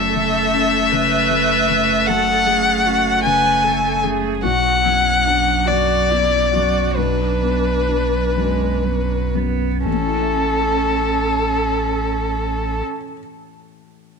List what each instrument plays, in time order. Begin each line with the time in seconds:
Already playing: sub bass F#1, felt piano F#2, cello A3, viola A4, violin E5
0.16 felt piano C#3
0.53 felt piano C#4
0.92 felt piano C#3, viola B4
1.30 felt piano A3
1.70 felt piano C#3
2.07 felt piano F#2, viola A4, violin F#5
2.46 felt piano A3, viola G#4
2.86 felt piano C#4, viola F#4
3.23 felt piano C#3, viola B4, violin G#5
3.64 felt piano A3, viola A4
4.04 felt piano C#3, viola G#4
4.43 felt piano B1, sub bass B1, cello F#3, viola F#4, violin F#5
4.84 felt piano F#2, viola E4
5.25 viola D4, felt piano D4
5.66 felt piano F#2, viola F#4, violin D5
6.10 felt piano B3, viola E4
6.53 felt piano F#2, viola F#4
6.96 felt piano B1, viola D4, violin B4
7.42 felt piano B3
7.89 felt piano D4
8.36 felt piano F#2, cello G#3
8.84 cello F#3, felt piano B3
9.35 felt piano F#2, cello B3
9.85 felt piano A1, sub bass A1, cello C#4, viola A4, violin A4
9.93 felt piano A2
10.00 felt piano C#4
10.07 felt piano E4
10.14 felt piano A4
10.21 felt piano E5